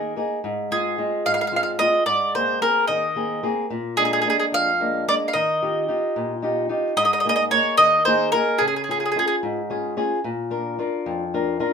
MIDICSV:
0, 0, Header, 1, 3, 480
1, 0, Start_track
1, 0, Tempo, 544465
1, 383, Time_signature, 6, 3, 24, 8
1, 10341, End_track
2, 0, Start_track
2, 0, Title_t, "Mandolin"
2, 0, Program_c, 0, 25
2, 634, Note_on_c, 0, 68, 76
2, 1110, Note_on_c, 0, 77, 86
2, 1123, Note_off_c, 0, 68, 0
2, 1170, Note_off_c, 0, 77, 0
2, 1182, Note_on_c, 0, 77, 62
2, 1234, Note_off_c, 0, 77, 0
2, 1245, Note_on_c, 0, 77, 60
2, 1288, Note_off_c, 0, 77, 0
2, 1298, Note_on_c, 0, 77, 56
2, 1363, Note_off_c, 0, 77, 0
2, 1378, Note_on_c, 0, 77, 61
2, 1427, Note_off_c, 0, 77, 0
2, 1438, Note_on_c, 0, 77, 56
2, 1498, Note_off_c, 0, 77, 0
2, 1578, Note_on_c, 0, 75, 92
2, 1804, Note_off_c, 0, 75, 0
2, 1816, Note_on_c, 0, 74, 80
2, 2068, Note_off_c, 0, 74, 0
2, 2072, Note_on_c, 0, 72, 66
2, 2292, Note_off_c, 0, 72, 0
2, 2309, Note_on_c, 0, 70, 77
2, 2531, Note_off_c, 0, 70, 0
2, 2534, Note_on_c, 0, 75, 70
2, 3046, Note_off_c, 0, 75, 0
2, 3500, Note_on_c, 0, 68, 82
2, 3560, Note_off_c, 0, 68, 0
2, 3571, Note_on_c, 0, 68, 59
2, 3631, Note_off_c, 0, 68, 0
2, 3641, Note_on_c, 0, 68, 66
2, 3701, Note_off_c, 0, 68, 0
2, 3716, Note_on_c, 0, 68, 58
2, 3772, Note_off_c, 0, 68, 0
2, 3789, Note_on_c, 0, 68, 65
2, 3841, Note_off_c, 0, 68, 0
2, 3875, Note_on_c, 0, 68, 51
2, 3918, Note_off_c, 0, 68, 0
2, 4004, Note_on_c, 0, 77, 89
2, 4444, Note_off_c, 0, 77, 0
2, 4483, Note_on_c, 0, 74, 87
2, 4529, Note_off_c, 0, 74, 0
2, 4655, Note_on_c, 0, 77, 53
2, 4703, Note_on_c, 0, 75, 73
2, 4711, Note_off_c, 0, 77, 0
2, 5639, Note_off_c, 0, 75, 0
2, 6145, Note_on_c, 0, 75, 93
2, 6204, Note_off_c, 0, 75, 0
2, 6214, Note_on_c, 0, 75, 61
2, 6276, Note_off_c, 0, 75, 0
2, 6287, Note_on_c, 0, 75, 64
2, 6338, Note_off_c, 0, 75, 0
2, 6349, Note_on_c, 0, 75, 63
2, 6415, Note_off_c, 0, 75, 0
2, 6428, Note_on_c, 0, 75, 77
2, 6476, Note_off_c, 0, 75, 0
2, 6486, Note_on_c, 0, 75, 62
2, 6549, Note_off_c, 0, 75, 0
2, 6621, Note_on_c, 0, 73, 85
2, 6850, Note_off_c, 0, 73, 0
2, 6854, Note_on_c, 0, 75, 97
2, 7094, Note_off_c, 0, 75, 0
2, 7098, Note_on_c, 0, 72, 76
2, 7330, Note_off_c, 0, 72, 0
2, 7334, Note_on_c, 0, 70, 76
2, 7568, Note_on_c, 0, 68, 69
2, 7593, Note_off_c, 0, 70, 0
2, 7638, Note_off_c, 0, 68, 0
2, 7648, Note_on_c, 0, 68, 45
2, 7715, Note_off_c, 0, 68, 0
2, 7725, Note_on_c, 0, 68, 41
2, 7782, Note_off_c, 0, 68, 0
2, 7792, Note_on_c, 0, 68, 35
2, 7844, Note_off_c, 0, 68, 0
2, 7855, Note_on_c, 0, 68, 46
2, 7920, Note_off_c, 0, 68, 0
2, 7934, Note_on_c, 0, 68, 39
2, 7972, Note_off_c, 0, 68, 0
2, 7983, Note_on_c, 0, 68, 48
2, 8026, Note_off_c, 0, 68, 0
2, 8037, Note_on_c, 0, 68, 48
2, 8091, Note_off_c, 0, 68, 0
2, 8102, Note_on_c, 0, 68, 61
2, 8166, Note_off_c, 0, 68, 0
2, 8177, Note_on_c, 0, 68, 54
2, 8243, Note_off_c, 0, 68, 0
2, 10341, End_track
3, 0, Start_track
3, 0, Title_t, "Nylon-string guitar"
3, 0, Program_c, 1, 24
3, 0, Note_on_c, 1, 51, 60
3, 0, Note_on_c, 1, 58, 41
3, 0, Note_on_c, 1, 63, 39
3, 0, Note_on_c, 1, 68, 52
3, 133, Note_off_c, 1, 58, 0
3, 135, Note_off_c, 1, 51, 0
3, 137, Note_off_c, 1, 63, 0
3, 142, Note_off_c, 1, 68, 0
3, 143, Note_on_c, 1, 58, 41
3, 147, Note_on_c, 1, 63, 39
3, 153, Note_on_c, 1, 68, 48
3, 335, Note_off_c, 1, 58, 0
3, 338, Note_off_c, 1, 63, 0
3, 341, Note_off_c, 1, 68, 0
3, 387, Note_on_c, 1, 44, 66
3, 622, Note_on_c, 1, 56, 35
3, 627, Note_on_c, 1, 60, 32
3, 635, Note_on_c, 1, 65, 46
3, 854, Note_off_c, 1, 44, 0
3, 854, Note_off_c, 1, 56, 0
3, 858, Note_off_c, 1, 60, 0
3, 858, Note_off_c, 1, 65, 0
3, 865, Note_on_c, 1, 56, 40
3, 868, Note_on_c, 1, 60, 36
3, 871, Note_on_c, 1, 65, 40
3, 1113, Note_on_c, 1, 44, 59
3, 1251, Note_off_c, 1, 56, 0
3, 1254, Note_off_c, 1, 60, 0
3, 1254, Note_off_c, 1, 65, 0
3, 1340, Note_on_c, 1, 56, 46
3, 1345, Note_on_c, 1, 60, 37
3, 1347, Note_on_c, 1, 65, 50
3, 1574, Note_off_c, 1, 56, 0
3, 1577, Note_off_c, 1, 44, 0
3, 1579, Note_off_c, 1, 60, 0
3, 1583, Note_off_c, 1, 65, 0
3, 1585, Note_on_c, 1, 56, 42
3, 1590, Note_on_c, 1, 60, 43
3, 1594, Note_on_c, 1, 65, 54
3, 1776, Note_off_c, 1, 56, 0
3, 1780, Note_off_c, 1, 60, 0
3, 1782, Note_off_c, 1, 65, 0
3, 1819, Note_on_c, 1, 44, 59
3, 2073, Note_on_c, 1, 58, 37
3, 2078, Note_on_c, 1, 68, 42
3, 2079, Note_on_c, 1, 60, 40
3, 2289, Note_off_c, 1, 44, 0
3, 2290, Note_off_c, 1, 58, 0
3, 2296, Note_off_c, 1, 60, 0
3, 2300, Note_off_c, 1, 68, 0
3, 2301, Note_on_c, 1, 58, 36
3, 2306, Note_on_c, 1, 60, 41
3, 2310, Note_on_c, 1, 68, 42
3, 2549, Note_on_c, 1, 51, 54
3, 2688, Note_off_c, 1, 58, 0
3, 2691, Note_off_c, 1, 60, 0
3, 2694, Note_off_c, 1, 68, 0
3, 2783, Note_on_c, 1, 58, 46
3, 2788, Note_on_c, 1, 60, 37
3, 2790, Note_on_c, 1, 68, 50
3, 3013, Note_off_c, 1, 60, 0
3, 3014, Note_off_c, 1, 51, 0
3, 3014, Note_off_c, 1, 58, 0
3, 3020, Note_off_c, 1, 68, 0
3, 3024, Note_on_c, 1, 58, 47
3, 3025, Note_on_c, 1, 60, 42
3, 3030, Note_on_c, 1, 68, 52
3, 3216, Note_off_c, 1, 58, 0
3, 3216, Note_off_c, 1, 60, 0
3, 3220, Note_off_c, 1, 68, 0
3, 3265, Note_on_c, 1, 46, 66
3, 3498, Note_on_c, 1, 56, 41
3, 3502, Note_on_c, 1, 58, 37
3, 3505, Note_on_c, 1, 62, 48
3, 3733, Note_off_c, 1, 46, 0
3, 3734, Note_off_c, 1, 56, 0
3, 3735, Note_off_c, 1, 58, 0
3, 3741, Note_off_c, 1, 62, 0
3, 3744, Note_on_c, 1, 56, 41
3, 3747, Note_on_c, 1, 58, 32
3, 3751, Note_on_c, 1, 62, 47
3, 3987, Note_on_c, 1, 41, 60
3, 4131, Note_off_c, 1, 56, 0
3, 4132, Note_off_c, 1, 58, 0
3, 4135, Note_off_c, 1, 62, 0
3, 4233, Note_on_c, 1, 56, 41
3, 4236, Note_on_c, 1, 58, 37
3, 4238, Note_on_c, 1, 62, 49
3, 4454, Note_off_c, 1, 41, 0
3, 4467, Note_off_c, 1, 56, 0
3, 4473, Note_off_c, 1, 58, 0
3, 4475, Note_off_c, 1, 62, 0
3, 4478, Note_on_c, 1, 56, 46
3, 4483, Note_on_c, 1, 58, 46
3, 4488, Note_on_c, 1, 62, 49
3, 4665, Note_off_c, 1, 56, 0
3, 4668, Note_off_c, 1, 58, 0
3, 4669, Note_off_c, 1, 62, 0
3, 4716, Note_on_c, 1, 51, 59
3, 4953, Note_on_c, 1, 63, 36
3, 4958, Note_on_c, 1, 65, 35
3, 4959, Note_on_c, 1, 67, 41
3, 5177, Note_off_c, 1, 63, 0
3, 5180, Note_off_c, 1, 51, 0
3, 5181, Note_off_c, 1, 65, 0
3, 5186, Note_off_c, 1, 67, 0
3, 5187, Note_on_c, 1, 63, 36
3, 5193, Note_on_c, 1, 65, 36
3, 5197, Note_on_c, 1, 67, 44
3, 5432, Note_on_c, 1, 46, 56
3, 5578, Note_off_c, 1, 63, 0
3, 5580, Note_off_c, 1, 65, 0
3, 5583, Note_off_c, 1, 67, 0
3, 5663, Note_on_c, 1, 63, 42
3, 5667, Note_on_c, 1, 65, 39
3, 5672, Note_on_c, 1, 67, 49
3, 5889, Note_off_c, 1, 63, 0
3, 5891, Note_off_c, 1, 65, 0
3, 5898, Note_off_c, 1, 67, 0
3, 5899, Note_on_c, 1, 63, 47
3, 5903, Note_off_c, 1, 46, 0
3, 5903, Note_on_c, 1, 65, 40
3, 5909, Note_on_c, 1, 67, 44
3, 6099, Note_off_c, 1, 63, 0
3, 6101, Note_off_c, 1, 65, 0
3, 6104, Note_off_c, 1, 67, 0
3, 6141, Note_on_c, 1, 44, 67
3, 6390, Note_on_c, 1, 58, 44
3, 6392, Note_on_c, 1, 63, 35
3, 6397, Note_on_c, 1, 68, 45
3, 6619, Note_off_c, 1, 44, 0
3, 6620, Note_off_c, 1, 58, 0
3, 6622, Note_off_c, 1, 63, 0
3, 6628, Note_off_c, 1, 68, 0
3, 6629, Note_on_c, 1, 58, 41
3, 6634, Note_on_c, 1, 63, 41
3, 6638, Note_on_c, 1, 68, 46
3, 6863, Note_on_c, 1, 51, 61
3, 7020, Note_off_c, 1, 58, 0
3, 7021, Note_off_c, 1, 63, 0
3, 7025, Note_off_c, 1, 68, 0
3, 7112, Note_on_c, 1, 58, 46
3, 7117, Note_on_c, 1, 63, 43
3, 7121, Note_on_c, 1, 68, 44
3, 7337, Note_off_c, 1, 58, 0
3, 7338, Note_off_c, 1, 51, 0
3, 7342, Note_off_c, 1, 63, 0
3, 7348, Note_off_c, 1, 68, 0
3, 7348, Note_on_c, 1, 58, 48
3, 7353, Note_on_c, 1, 63, 46
3, 7358, Note_on_c, 1, 68, 51
3, 7544, Note_off_c, 1, 58, 0
3, 7547, Note_off_c, 1, 63, 0
3, 7550, Note_off_c, 1, 68, 0
3, 7590, Note_on_c, 1, 49, 56
3, 7834, Note_on_c, 1, 61, 44
3, 7838, Note_on_c, 1, 65, 36
3, 7840, Note_on_c, 1, 68, 47
3, 8060, Note_off_c, 1, 49, 0
3, 8062, Note_off_c, 1, 61, 0
3, 8066, Note_off_c, 1, 65, 0
3, 8072, Note_off_c, 1, 68, 0
3, 8073, Note_on_c, 1, 61, 43
3, 8078, Note_on_c, 1, 65, 36
3, 8083, Note_on_c, 1, 68, 53
3, 8313, Note_on_c, 1, 44, 68
3, 8457, Note_off_c, 1, 61, 0
3, 8459, Note_off_c, 1, 65, 0
3, 8463, Note_off_c, 1, 68, 0
3, 8550, Note_on_c, 1, 61, 44
3, 8555, Note_on_c, 1, 65, 42
3, 8557, Note_on_c, 1, 68, 53
3, 8777, Note_off_c, 1, 44, 0
3, 8777, Note_off_c, 1, 61, 0
3, 8777, Note_off_c, 1, 65, 0
3, 8784, Note_off_c, 1, 68, 0
3, 8787, Note_on_c, 1, 61, 56
3, 8791, Note_on_c, 1, 65, 47
3, 8795, Note_on_c, 1, 68, 60
3, 8978, Note_off_c, 1, 61, 0
3, 8978, Note_off_c, 1, 65, 0
3, 8983, Note_off_c, 1, 68, 0
3, 9031, Note_on_c, 1, 46, 65
3, 9262, Note_on_c, 1, 62, 46
3, 9266, Note_on_c, 1, 65, 39
3, 9267, Note_on_c, 1, 70, 46
3, 9493, Note_off_c, 1, 46, 0
3, 9498, Note_off_c, 1, 62, 0
3, 9503, Note_off_c, 1, 65, 0
3, 9504, Note_off_c, 1, 70, 0
3, 9508, Note_on_c, 1, 62, 44
3, 9513, Note_on_c, 1, 65, 44
3, 9518, Note_on_c, 1, 70, 41
3, 9752, Note_on_c, 1, 41, 58
3, 9892, Note_off_c, 1, 62, 0
3, 9896, Note_off_c, 1, 65, 0
3, 9896, Note_off_c, 1, 70, 0
3, 9996, Note_on_c, 1, 62, 47
3, 9999, Note_on_c, 1, 65, 44
3, 10000, Note_on_c, 1, 70, 49
3, 10214, Note_off_c, 1, 62, 0
3, 10215, Note_off_c, 1, 41, 0
3, 10216, Note_off_c, 1, 65, 0
3, 10219, Note_off_c, 1, 70, 0
3, 10223, Note_on_c, 1, 62, 49
3, 10229, Note_on_c, 1, 65, 51
3, 10229, Note_on_c, 1, 70, 55
3, 10341, Note_off_c, 1, 62, 0
3, 10341, Note_off_c, 1, 65, 0
3, 10341, Note_off_c, 1, 70, 0
3, 10341, End_track
0, 0, End_of_file